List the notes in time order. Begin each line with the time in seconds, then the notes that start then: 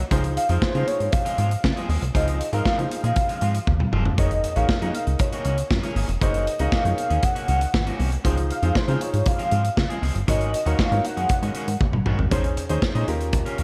0.11 C#2 F3 G#3 C4 D#4 F4 G#4 C5, kick, closed hi-hat
0.24 muted clean electric guitar stroke, closed hi-hat
0.37 F5, muted clean electric guitar stroke, closed hi-hat
0.49 F2 F3 G#3 C4 D#4 F4 G#4 C5, closed hi-hat
0.62 C5, muted clean electric guitar stroke, kick, snare
0.74 C#3 F3 G#3 C4 D#4 F4 G#4 C5, closed hi-hat
0.87 C#5, muted clean electric guitar stroke, closed hi-hat
1.00 G#2, muted clean electric guitar stroke, closed hi-hat
1.12 F5, muted clean electric guitar stroke, kick, closed hi-hat
1.25 F3 G#3 C4 F4, closed hi-hat
1.38 G#2 F3 G#3 C4 F4, closed hi-hat
1.51 muted clean electric guitar stroke, closed hi-hat
1.64 C#3, muted clean electric guitar stroke, kick, snare
1.76 F3 G#3 C4 G#4, closed hi-hat
1.89 D#2 F3 G#3 C4 G#4, open hi-hat
2.02 C2, muted clean electric guitar stroke, closed hi-hat
2.14 C#2 F3 G#3 C4 D#4 F4 G#4 C5 D#5, kick, closed hi-hat
2.28 closed hi-hat
2.40 muted clean electric guitar stroke, closed hi-hat
2.52 G#2 F3 G#3 C4 D#4 F4 G#4 A#4 F5, closed hi-hat
2.65 C#3 F3 G#3 C4 F4, kick, snare
2.78 C#3 D#4 F4 G#4 C5, muted clean electric guitar stroke, closed hi-hat
2.91 F5, muted clean electric guitar stroke, closed hi-hat
3.04 A#2 F3 G#3 C4 G#4, closed hi-hat
3.16 muted clean electric guitar stroke, kick, closed hi-hat
3.29 F3 G#3 C4 F4, closed hi-hat
3.41 G#2 F3 G#3 C4 F4, closed hi-hat
3.54 muted clean electric guitar stroke, closed hi-hat
3.67 D#2, kick, high tom
3.80 muted clean electric guitar stroke, mid tom
3.92 F1 F3 G#3 C4 F4, mid tom
4.05 muted clean electric guitar stroke, floor tom
4.18 F#1 D#3 A#3 C#4 D#4 F#4 G#4 A#4 C#5 D#5, kick, closed hi-hat
4.31 muted clean electric guitar stroke, closed hi-hat
4.43 muted clean electric guitar stroke, closed hi-hat
4.56 A#1 D#3 A#3 C#4 D#4 F#4 G#4 A#4 C#5 F5, closed hi-hat
4.69 muted clean electric guitar stroke, kick, snare
4.81 F#2 D#3 A#3 C#4 D#4 F#4 G#4 A#4 D#5, closed hi-hat
4.94 F5, muted clean electric guitar stroke, closed hi-hat
5.07 C#2, muted clean electric guitar stroke, closed hi-hat
5.19 C#5, muted clean electric guitar stroke, kick, closed hi-hat
5.32 D#3 A#3 C#4 F#4, closed hi-hat
5.45 C#2 D#3 A#3 C#4 F#4, closed hi-hat
5.58 muted clean electric guitar stroke, closed hi-hat
5.70 F#2, muted clean electric guitar stroke, kick, snare
5.83 D#3 A#3 C#4 G#4, closed hi-hat
5.96 G#1 D#3 A#3 C#4 G#4, open hi-hat
6.08 F1, muted clean electric guitar stroke, closed hi-hat
6.21 F#1 D#3 A#3 C#4 D#4 F#4 G#4 A#4 C5 D#5, kick, closed hi-hat
6.34 closed hi-hat
6.46 muted clean electric guitar stroke, closed hi-hat
6.59 C#2 D#3 A#3 C#4 D#4 F#4 G#4 A#4 D#5 F5, closed hi-hat
6.71 D#3 A#3 C#4 F#4, kick, snare
6.84 F#2 D#4 G#4 A#4 C#5, muted clean electric guitar stroke, closed hi-hat
6.97 F5, muted clean electric guitar stroke, closed hi-hat
7.10 D#2 D#3 A#3 C#4 G#4, closed hi-hat
7.22 F#5, muted clean electric guitar stroke, kick, closed hi-hat
7.35 D#3 A#3 C#4 F#4, closed hi-hat
7.48 C#2 D#3 A#3 C#4 F#4, closed hi-hat
7.61 muted clean electric guitar stroke, closed hi-hat
7.74 G#1, muted clean electric guitar stroke, kick, snare
7.86 D#3 A#3 C#4 F#4, closed hi-hat
7.99 C2 D#3 A#3 C#4 F#4, open hi-hat
8.12 muted clean electric guitar stroke, closed hi-hat
8.24 C#2 F3 G#3 C4 D#4 F4 G#4 C5, kick, closed hi-hat
8.37 muted clean electric guitar stroke, closed hi-hat
8.50 F5, muted clean electric guitar stroke, closed hi-hat
8.63 F2 F3 G#3 C4 D#4 F4 G#4 C5, closed hi-hat
8.75 C5, muted clean electric guitar stroke, kick, snare
8.88 C#3 F3 G#3 C4 D#4 F4 G#4 C5, closed hi-hat
9.01 C#5, muted clean electric guitar stroke, closed hi-hat
9.14 G#2, muted clean electric guitar stroke, closed hi-hat
9.26 F5, muted clean electric guitar stroke, kick, closed hi-hat
9.39 F3 G#3 C4 F4, closed hi-hat
9.51 G#2 F3 G#3 C4 F4, closed hi-hat
9.64 muted clean electric guitar stroke, closed hi-hat
9.77 C#3, muted clean electric guitar stroke, kick, snare
9.89 F3 G#3 C4 G#4, closed hi-hat
10.02 C#2 F3 G#3 C4 G#4, open hi-hat
10.15 G1, muted clean electric guitar stroke, closed hi-hat
10.27 G#1 D#3 G#3 C#4 D#4 F#4 A#4 C#5 D#5, kick, closed hi-hat
10.41 closed hi-hat
10.53 muted clean electric guitar stroke, closed hi-hat
10.66 D#2 D#3 G#3 C#4 D#4 F#4 A#4 C#5 F5, closed hi-hat
10.78 D#3 G#3 C#4 F#4, kick, snare
10.91 G#2 D#4 F#4 A#4 C#5, muted clean electric guitar stroke, closed hi-hat
11.04 F#5, muted clean electric guitar stroke, closed hi-hat
11.17 F#2 D#3 G#3 C#4 G#4, closed hi-hat
11.29 muted clean electric guitar stroke, kick, closed hi-hat
11.42 G#2 D#3 G#3 C#4 F#4, closed hi-hat
11.55 D#3 G#3 C#4 F#4, closed hi-hat
11.68 G#2, muted clean electric guitar stroke, closed hi-hat
11.81 kick, high tom
11.93 G#1, muted clean electric guitar stroke, mid tom
12.06 A#1 D#3 G#3 C#4 F#4, mid tom
12.19 A1, muted clean electric guitar stroke, floor tom
12.31 A#1 C#4 D#4 G#4 C5, kick, closed hi-hat
12.44 muted clean electric guitar stroke, closed hi-hat
12.57 muted clean electric guitar stroke, closed hi-hat
12.69 D#2 C#4 D#4 G#4 C5, closed hi-hat
12.82 muted clean electric guitar stroke, kick, snare
12.95 A#2 C#4 D#4 G#4 C5 D#5, closed hi-hat
13.07 D#2 C#4 F4 G4 A#4, muted clean electric guitar stroke, closed hi-hat
13.20 muted clean electric guitar stroke, closed hi-hat
13.33 muted clean electric guitar stroke, kick, closed hi-hat
13.46 G3 C#4 F4 A#4, closed hi-hat
13.58 D#2 G3 C#4 F4 A#4, closed hi-hat